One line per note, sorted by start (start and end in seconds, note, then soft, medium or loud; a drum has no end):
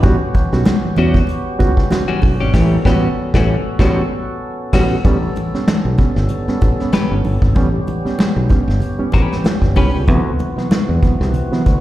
0.02 0.16 A1 loud
0.02 0.15 G3 loud
0.02 5.00 B3 medium
0.02 0.15 B3 medium
0.02 5.00 C#4 medium
0.02 0.15 C#4 medium
0.02 5.00 F#4 medium
0.02 0.15 F#4 loud
0.02 2.51 G4 medium
0.02 kick loud
0.02 closed hi-hat medium
0.02 muted conga medium
0.34 0.47 A2 medium
0.34 0.47 E3 medium
0.34 kick loud
0.34 closed hi-hat medium
0.34 muted conga soft
0.52 0.62 B1 medium
0.52 0.62 G3 medium
0.52 0.62 B3 medium
0.52 0.62 C#4 medium
0.52 0.62 F#4 medium
0.52 snare soft
0.65 0.74 C#4 soft
0.65 0.73 F#4 soft
0.65 snare loud
0.65 closed hi-hat medium
0.65 high conga medium
0.84 0.93 A2 medium
0.84 0.93 E3 medium
0.84 muted fingered electric bass stroke medium
0.96 1.21 E2 loud
0.96 1.09 G3 medium
0.96 1.18 G3 medium
0.96 1.10 B3 medium
0.96 1.18 C#4 medium
0.96 1.10 C#4 medium
0.96 1.10 F#4 medium
0.96 1.18 F#4 medium
0.96 closed hi-hat medium
0.96 low conga medium
1.14 kick medium
1.14 snare soft
1.27 closed hi-hat medium
1.27 muted conga soft
1.59 1.83 C#2 medium
1.59 1.71 G3 medium
1.59 1.71 B3 medium
1.59 1.72 C#4 medium
1.59 1.72 F#4 loud
1.59 kick medium
1.59 closed hi-hat medium
1.59 muted conga medium
1.77 kick medium
1.77 snare soft
1.90 2.03 C#4 medium
1.90 2.03 F#4 medium
1.90 snare medium
1.90 closed hi-hat medium
1.90 high conga medium
2.08 2.19 A2 medium
2.08 2.19 E3 medium
2.08 2.26 G3 medium
2.08 2.26 C#4 medium
2.08 2.25 F#4 medium
2.22 2.36 B1 medium
2.22 2.34 C#4 medium
2.22 2.35 F#4 medium
2.22 kick medium
2.22 open hi-hat medium
2.22 high conga medium
2.40 2.51 G#1 medium
2.40 2.53 G3 medium
2.40 2.53 C#4 medium
2.40 2.53 G4 medium
2.54 2.76 A1 loud
2.54 2.76 A2 loud
2.54 2.76 E3 loud
2.54 2.76 G3 loud
2.54 2.76 C#4 loud
2.54 2.76 G4 loud
2.54 5.03 A4 medium
2.54 kick loud
2.54 snare loud
2.54 crash medium
2.85 3.07 A1 medium
2.85 3.07 G3 medium
2.85 3.08 G3 loud
2.85 3.08 B3 loud
2.85 3.08 C#4 loud
2.85 3.08 F#4 loud
2.85 3.07 G4 loud
2.85 kick loud
2.85 snare loud
3.34 3.55 A1 loud
3.34 3.55 A2 loud
3.34 3.55 E3 medium
3.34 3.55 G3 loud
3.34 3.56 C#4 loud
3.34 3.56 F#4 loud
3.34 kick medium
3.34 snare loud
3.79 4.01 A1 loud
3.79 4.01 G3 medium
3.79 4.02 G3 loud
3.79 4.02 B3 medium
3.79 4.02 C#4 medium
3.79 4.02 C#4 loud
3.79 4.02 F#4 loud
3.79 4.02 F#4 medium
3.79 kick loud
3.79 snare loud
4.73 4.95 A1 loud
4.73 4.95 G3 medium
4.73 4.95 G3 loud
4.73 4.96 B3 medium
4.73 4.96 C#4 medium
4.73 4.96 F#4 loud
4.73 kick medium
4.73 snare loud
4.73 crash medium
5.04 5.28 A1 loud
5.04 5.17 G3 loud
5.04 10.05 G3 medium
5.04 5.17 B3 medium
5.04 11.80 B3 medium
5.04 5.17 C#4 loud
5.04 10.05 C#4 medium
5.04 7.54 A4 medium
5.04 kick loud
5.04 closed hi-hat medium
5.04 muted conga medium
5.36 5.49 A2 medium
5.36 5.49 E3 medium
5.36 closed hi-hat medium
5.36 muted conga medium
5.54 5.63 G3 medium
5.54 5.64 B3 medium
5.54 5.64 C#4 medium
5.54 muted fingered electric bass stroke soft
5.54 snare soft
5.67 5.80 A2 medium
5.67 5.80 E3 medium
5.67 snare loud
5.67 closed hi-hat medium
5.67 high conga medium
5.85 5.95 B1 medium
5.98 6.11 G3 medium
5.98 6.11 B3 medium
5.98 6.11 C#4 medium
5.98 kick medium
5.98 closed hi-hat medium
5.98 low conga medium
6.16 6.26 G1 loud
6.16 6.23 B3 soft
6.16 6.22 C#4 soft
6.16 snare soft
6.29 closed hi-hat medium
6.29 muted conga soft
6.29 low conga medium
6.48 6.58 G3 medium
6.48 6.57 B3 medium
6.48 6.58 C#4 medium
6.48 muted fingered electric bass stroke soft
6.48 snare soft
6.61 6.75 A1 medium
6.61 6.74 A2 medium
6.61 6.74 E3 medium
6.61 kick loud
6.61 closed hi-hat medium
6.61 muted conga medium
6.80 6.90 G3 medium
6.80 6.90 B3 medium
6.80 6.90 C#4 medium
6.80 snare soft
6.92 7.06 A2 medium
6.92 7.06 E3 medium
6.92 7.13 C#4 medium
6.92 7.13 G4 medium
6.92 7.14 B4 medium
6.92 snare loud
6.92 closed hi-hat medium
6.92 high conga medium
7.10 7.21 G1 medium
7.10 7.20 G3 medium
7.10 7.20 B3 medium
7.10 7.20 C#4 medium
7.24 7.38 G1 medium
7.24 7.32 B3 soft
7.24 7.32 C#4 soft
7.24 open hi-hat medium
7.24 high conga medium
7.42 7.52 G#1 medium
7.42 kick medium
7.55 7.79 A1 loud
7.55 7.68 G3 medium
7.55 7.68 B3 medium
7.55 7.68 C#4 loud
7.55 10.05 G4 medium
7.55 kick loud
7.55 closed hi-hat medium
7.55 muted conga medium
7.87 8.00 A2 medium
7.87 8.00 E3 medium
7.87 closed hi-hat medium
7.87 muted conga medium
8.05 8.15 G3 medium
8.05 8.15 B3 medium
8.05 8.15 C#4 medium
8.05 muted fingered electric bass stroke medium
8.05 snare soft
8.19 8.32 A2 medium
8.19 8.31 E3 medium
8.19 snare loud
8.19 closed hi-hat medium
8.19 high conga medium
8.36 8.47 B1 medium
8.49 8.63 G3 medium
8.49 8.63 B3 medium
8.49 8.63 C#4 medium
8.49 kick medium
8.49 closed hi-hat medium
8.49 low conga medium
8.68 8.78 G1 loud
8.68 8.74 B3 soft
8.68 8.74 C#4 soft
8.68 snare soft
8.80 closed hi-hat medium
8.80 muted conga soft
8.80 low conga medium
8.99 9.09 G3 medium
8.99 9.09 B3 medium
8.99 9.09 C#4 medium
8.99 muted fingered electric bass stroke soft
9.12 9.27 A1 medium
9.12 9.35 C#4 medium
9.12 9.35 G4 medium
9.12 9.35 B4 medium
9.12 kick medium
9.12 closed hi-hat medium
9.12 muted conga medium
9.32 9.41 A2 medium
9.32 9.41 E3 medium
9.32 snare soft
9.44 snare loud
9.44 closed hi-hat medium
9.44 high conga medium
9.62 9.72 G1 medium
9.62 kick medium
9.62 snare soft
9.76 9.90 C2 loud
9.76 9.89 G3 medium
9.76 9.89 B3 medium
9.76 9.97 C#4 medium
9.76 9.89 C#4 loud
9.76 9.97 G4 medium
9.76 9.97 B4 medium
9.76 kick medium
9.76 open hi-hat medium
9.76 high conga medium
9.95 10.08 C#2 medium
10.07 10.31 D2 loud
10.07 10.20 C3 medium
10.07 11.80 E3 medium
10.07 10.21 E3 medium
10.07 10.20 F#3 medium
10.07 10.21 B3 loud
10.07 11.80 C4 medium
10.07 11.80 F#4 medium
10.07 kick loud
10.07 closed hi-hat medium
10.07 muted conga medium
10.39 closed hi-hat medium
10.39 muted conga medium
10.57 10.67 C3 medium
10.57 10.67 E3 medium
10.57 10.67 F#3 medium
10.57 10.67 B3 medium
10.57 muted fingered electric bass stroke soft
10.57 snare soft
10.71 snare loud
10.71 closed hi-hat medium
10.71 high conga medium
10.89 10.99 E2 medium
11.02 11.15 C3 medium
11.02 11.15 E3 medium
11.02 11.15 F#3 medium
11.02 11.15 B3 medium
11.02 kick medium
11.02 closed hi-hat medium
11.02 low conga medium
11.21 11.31 C2 medium
11.21 11.26 F#3 soft
11.21 11.26 B3 soft
11.21 snare soft
11.34 closed hi-hat medium
11.34 muted conga soft
11.34 low conga medium
11.52 11.61 C3 medium
11.52 11.61 E3 medium
11.52 11.61 F#3 medium
11.52 11.62 B3 medium
11.52 muted fingered electric bass stroke soft
11.52 snare soft
11.66 11.79 D2 medium
11.66 kick medium
11.66 closed hi-hat medium
11.66 muted conga medium